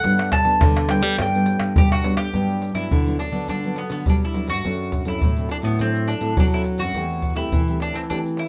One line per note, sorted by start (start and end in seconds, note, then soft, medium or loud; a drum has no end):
0.00 0.29 F#5 loud
0.00 pandeiro medium
0.00 shaker medium
0.00 surdo medium
0.04 0.59 G2 medium
0.04 0.53 G2 loud
0.04 0.32 G3 medium
0.04 0.32 B3 medium
0.04 0.32 D4 medium
0.19 pandeiro soft
0.19 tamborim medium
0.19 shaker soft
0.32 0.90 A5 loud
0.32 pandeiro medium
0.32 tamborim medium
0.32 surdo medium
0.45 0.85 G3 medium
0.45 0.85 B3 medium
0.45 0.86 D4 medium
0.45 pandeiro medium
0.45 shaker medium
0.61 1.17 D3 medium
0.61 1.02 D3 medium
0.61 pandeiro medium
0.61 tamborim medium
0.61 shaker medium
0.61 surdo loud
0.77 pandeiro soft
0.77 tamborim medium
0.77 shaker soft
0.89 1.29 G3 medium
0.89 1.29 B3 medium
0.89 1.29 D4 medium
0.89 1.18 G5 medium
0.89 pandeiro medium
0.89 tamborim medium
1.02 1.16 G3 medium
1.02 pandeiro medium
1.02 shaker medium
1.18 1.56 G2 loud
1.18 1.74 G2 medium
1.18 2.03 G5 medium
1.18 pandeiro medium
1.18 tamborim medium
1.18 shaker medium
1.18 surdo medium
1.34 1.73 G3 medium
1.34 1.73 B3 medium
1.34 1.73 D4 medium
1.34 pandeiro soft
1.34 shaker soft
1.46 pandeiro medium
1.60 1.73 G2 medium
1.60 pandeiro medium
1.60 tamborim medium
1.60 shaker medium
1.76 2.26 G2 medium
1.76 2.31 D3 medium
1.76 1.94 G3 medium
1.76 1.94 B3 medium
1.76 1.94 D4 medium
1.76 1.91 G4 medium
1.76 pandeiro medium
1.76 shaker medium
1.76 surdo loud
1.92 2.17 F#4 medium
1.92 pandeiro soft
1.92 tamborim medium
1.92 shaker soft
2.03 2.29 G3 medium
2.03 2.29 B3 medium
2.03 2.29 D4 medium
2.03 pandeiro medium
2.03 shaker medium
2.17 2.72 G4 medium
2.17 pandeiro medium
2.17 tamborim medium
2.17 shaker medium
2.33 2.89 G2 medium
2.33 2.71 G2 medium
2.33 2.61 F#3 soft
2.33 2.61 B3 medium
2.33 2.61 D4 medium
2.33 pandeiro medium
2.33 shaker medium
2.33 surdo soft
2.49 pandeiro soft
2.49 shaker soft
2.62 pandeiro medium
2.74 2.88 G2 medium
2.74 3.00 F#3 medium
2.74 3.00 B3 medium
2.74 3.01 D4 medium
2.74 3.19 E4 medium
2.74 pandeiro medium
2.74 shaker medium
2.91 3.46 D3 medium
2.91 3.17 D3 medium
2.91 pandeiro medium
2.91 shaker medium
2.91 surdo medium
3.06 3.31 F#3 soft
3.06 3.31 B3 medium
3.06 3.31 D4 medium
3.06 pandeiro soft
3.06 shaker soft
3.19 3.47 D4 medium
3.19 pandeiro medium
3.19 shaker medium
3.32 3.82 D3 medium
3.32 3.58 F#3 medium
3.32 3.58 B3 medium
3.32 3.58 D4 medium
3.32 pandeiro medium
3.32 shaker medium
3.48 4.04 G2 soft
3.48 3.76 D4 medium
3.48 pandeiro medium
3.48 shaker medium
3.48 surdo medium
3.64 4.03 F#3 medium
3.64 4.03 B3 medium
3.64 4.03 D4 medium
3.64 pandeiro soft
3.64 shaker soft
3.76 3.90 B3 medium
3.76 pandeiro medium
3.90 4.04 D3 medium
3.90 4.06 B3 medium
3.90 pandeiro medium
3.90 shaker medium
4.06 4.62 D3 medium
4.06 4.24 F#3 medium
4.06 4.50 G3 medium
4.06 4.24 B3 soft
4.06 4.24 D4 medium
4.06 4.15 D4 medium
4.06 pandeiro medium
4.06 shaker medium
4.06 surdo medium
4.22 4.49 E4 medium
4.22 pandeiro soft
4.22 shaker soft
4.34 4.52 F#3 medium
4.34 4.53 B3 soft
4.34 4.53 D4 medium
4.34 pandeiro medium
4.48 4.62 G2 medium
4.48 5.04 F#4 medium
4.48 pandeiro medium
4.48 shaker medium
4.64 5.02 F#2 medium
4.64 5.19 F#3 soft
4.64 5.03 C4 soft
4.64 5.03 D4 medium
4.64 5.04 A4 medium
4.64 pandeiro medium
4.64 shaker medium
4.64 surdo medium
4.80 pandeiro soft
4.80 shaker soft
4.92 pandeiro medium
4.92 shaker medium
4.92 surdo medium
5.05 5.20 F#2 medium
5.05 5.31 C4 medium
5.05 5.31 D4 medium
5.05 5.51 E4 medium
5.05 5.32 A4 medium
5.05 pandeiro medium
5.05 shaker medium
5.21 5.47 A2 medium
5.21 5.77 F#3 medium
5.21 pandeiro medium
5.21 shaker medium
5.21 surdo medium
5.36 5.76 C4 medium
5.36 5.76 D4 medium
5.36 5.77 A4 medium
5.36 pandeiro soft
5.36 shaker soft
5.49 5.56 D4 medium
5.49 pandeiro medium
5.49 shaker medium
5.62 6.13 A2 medium
5.62 5.78 B3 medium
5.62 pandeiro soft
5.62 shaker medium
5.79 6.35 F#3 soft
5.79 6.19 C4 medium
5.79 6.07 C4 medium
5.79 6.19 D4 medium
5.79 6.20 A4 medium
5.79 pandeiro medium
5.79 shaker medium
5.79 surdo soft
5.95 pandeiro soft
5.95 shaker soft
6.08 6.35 D4 medium
6.08 pandeiro medium
6.21 6.34 A2 medium
6.21 6.47 C4 medium
6.21 6.47 D4 medium
6.21 6.47 A4 medium
6.21 pandeiro medium
6.21 shaker medium
6.37 6.81 F#3 loud
6.37 6.93 F#3 soft
6.37 6.45 D4 medium
6.37 pandeiro medium
6.37 shaker medium
6.37 surdo medium
6.52 6.91 C4 medium
6.52 6.91 D4 medium
6.52 6.61 E4 medium
6.52 6.92 A4 medium
6.52 pandeiro soft
6.52 shaker soft
6.64 pandeiro medium
6.78 6.92 F#2 medium
6.78 7.34 F#4 medium
6.78 pandeiro soft
6.78 shaker medium
6.94 7.32 E2 medium
6.94 7.50 E3 medium
6.94 7.23 A3 soft
6.94 7.23 C4 medium
6.94 7.23 G4 medium
6.94 pandeiro medium
6.94 shaker medium
6.94 surdo medium
7.10 pandeiro soft
7.10 shaker soft
7.22 pandeiro medium
7.22 shaker medium
7.22 surdo medium
7.36 7.49 E2 medium
7.36 7.62 A3 medium
7.36 7.62 C4 medium
7.36 7.81 E4 medium
7.36 7.62 G4 medium
7.36 pandeiro medium
7.36 shaker medium
7.52 7.78 E3 medium
7.52 8.08 E3 medium
7.52 pandeiro medium
7.52 shaker medium
7.52 surdo medium
7.68 8.07 A3 medium
7.68 8.07 C4 medium
7.68 8.07 G4 medium
7.68 pandeiro soft
7.68 shaker soft
7.80 7.95 D4 medium
7.80 pandeiro medium
7.93 8.44 E3 medium
7.93 8.00 C4 medium
7.93 pandeiro medium
7.93 shaker medium
8.10 8.48 E3 medium
8.10 8.38 A3 medium
8.10 8.38 C4 medium
8.10 8.18 D4 medium
8.10 8.38 G4 medium
8.10 pandeiro medium
8.10 shaker medium
8.10 surdo medium
8.26 pandeiro soft
8.26 shaker soft
8.37 8.47 E4 medium
8.37 pandeiro medium